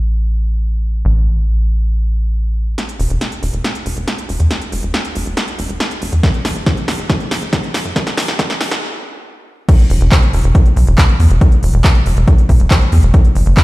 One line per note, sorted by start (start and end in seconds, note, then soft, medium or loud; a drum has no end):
0.00 1.03 A1 medium
1.05 2.76 A1 medium
2.78 snare soft
2.78 closed hi-hat medium
2.89 closed hi-hat medium
2.99 3.07 E1 medium
2.99 open hi-hat loud
3.10 3.18 E1 medium
3.10 closed hi-hat medium
3.21 snare soft
3.21 closed hi-hat medium
3.32 closed hi-hat medium
3.43 3.50 E1 loud
3.43 open hi-hat medium
3.53 3.61 E1 medium
3.53 closed hi-hat medium
3.64 snare medium
3.64 closed hi-hat medium
3.75 closed hi-hat soft
3.86 3.93 E1 medium
3.86 open hi-hat loud
3.97 4.04 E1 medium
3.97 closed hi-hat medium
4.08 snare medium
4.08 closed hi-hat medium
4.18 closed hi-hat soft
4.29 4.37 E1 medium
4.29 open hi-hat loud
4.40 4.47 E2 medium
4.40 closed hi-hat medium
4.51 snare medium
4.51 closed hi-hat medium
4.62 closed hi-hat medium
4.72 4.80 E1 medium
4.72 open hi-hat loud
4.83 4.91 E1 medium
4.83 closed hi-hat soft
4.94 snare medium
4.94 closed hi-hat medium
5.05 closed hi-hat medium
5.15 5.23 E1 medium
5.15 open hi-hat loud
5.26 5.34 E1 medium
5.26 closed hi-hat medium
5.37 snare medium
5.37 closed hi-hat medium
5.48 closed hi-hat medium
5.59 5.66 E1 medium
5.59 open hi-hat loud
5.69 5.77 E1 medium
5.69 closed hi-hat medium
5.80 snare medium
5.80 closed hi-hat medium
5.91 closed hi-hat medium
6.02 6.09 E1 medium
6.02 open hi-hat loud
6.12 6.20 E2 medium
6.12 closed hi-hat medium
6.23 kick loud
6.23 snare medium
6.23 closed hi-hat medium
6.34 closed hi-hat medium
6.45 6.52 F#1 medium
6.45 snare medium
6.45 open hi-hat loud
6.56 6.63 F#1 medium
6.56 closed hi-hat soft
6.66 kick loud
6.66 snare medium
6.66 closed hi-hat medium
6.77 closed hi-hat medium
6.88 6.96 F#1 loud
6.88 snare medium
6.88 open hi-hat loud
6.99 7.06 F#1 medium
6.99 closed hi-hat medium
7.10 kick loud
7.10 snare medium
7.10 closed hi-hat medium
7.20 closed hi-hat medium
7.31 7.39 F#1 medium
7.31 snare medium
7.31 open hi-hat loud
7.42 7.50 F#1 medium
7.42 closed hi-hat medium
7.53 kick loud
7.53 snare medium
7.53 closed hi-hat medium
7.64 closed hi-hat medium
7.74 7.82 F#1 medium
7.74 snare medium
7.74 open hi-hat loud
7.85 7.93 F#2 medium
7.85 closed hi-hat medium
7.96 kick loud
7.96 snare medium
7.96 closed hi-hat medium
8.07 snare medium
8.07 closed hi-hat soft
8.17 8.25 F#1 medium
8.17 snare loud
8.17 open hi-hat loud
8.28 8.36 F#1 medium
8.28 snare medium
8.28 closed hi-hat soft
8.39 kick loud
8.39 snare medium
8.39 closed hi-hat medium
8.50 snare medium
8.50 closed hi-hat medium
8.61 8.68 F#1 loud
8.61 snare loud
8.61 open hi-hat loud
8.71 8.79 F#1 medium
8.71 snare medium
8.71 closed hi-hat medium
9.69 kick loud
9.69 closed hi-hat medium
9.69 crash loud
9.79 closed hi-hat medium
9.90 9.98 E1 medium
9.90 open hi-hat loud
10.01 10.09 E1 medium
10.01 closed hi-hat medium
10.12 kick loud
10.12 clap loud
10.12 closed hi-hat medium
10.23 closed hi-hat medium
10.33 10.41 E1 loud
10.33 open hi-hat medium
10.44 10.52 E1 medium
10.44 closed hi-hat medium
10.55 kick loud
10.55 closed hi-hat medium
10.66 closed hi-hat medium
10.76 10.84 B1 medium
10.76 open hi-hat loud
10.87 10.95 E1 medium
10.87 closed hi-hat medium
10.98 kick loud
10.98 clap loud
10.98 closed hi-hat medium
11.09 closed hi-hat medium
11.20 11.27 E2 medium
11.20 open hi-hat loud
11.30 11.38 E1 medium
11.30 closed hi-hat medium
11.41 kick loud
11.41 closed hi-hat medium
11.52 closed hi-hat medium
11.63 11.71 E1 medium
11.63 open hi-hat loud
11.74 11.81 E1 medium
11.74 closed hi-hat medium
11.84 kick loud
11.84 clap loud
11.84 closed hi-hat medium
11.95 closed hi-hat medium
12.06 12.14 E1 loud
12.06 open hi-hat loud
12.17 12.24 E1 medium
12.17 closed hi-hat medium
12.28 kick loud
12.28 closed hi-hat medium
12.38 closed hi-hat medium
12.49 12.57 B1 medium
12.49 kick medium
12.49 open hi-hat loud
12.60 12.68 E1 medium
12.60 closed hi-hat medium
12.71 kick loud
12.71 clap loud
12.71 closed hi-hat medium
12.81 closed hi-hat medium
12.92 13.00 E2 medium
12.92 open hi-hat loud
13.03 13.11 E1 medium
13.03 closed hi-hat medium
13.14 kick loud
13.14 closed hi-hat medium
13.25 closed hi-hat medium
13.35 13.43 F#1 loud
13.35 open hi-hat loud
13.46 13.54 F#1 medium
13.46 closed hi-hat medium
13.57 kick loud
13.57 clap loud
13.57 closed hi-hat medium